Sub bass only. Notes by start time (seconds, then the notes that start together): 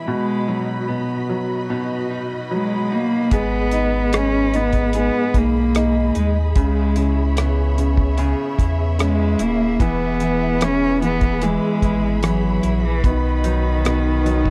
3.32 G#1
5.34 B1
6.16 D#2
6.56 C#2
8.59 E2
9.40 D#1
9.80 E1
11.83 G#1
12.64 A#1
13.04 B1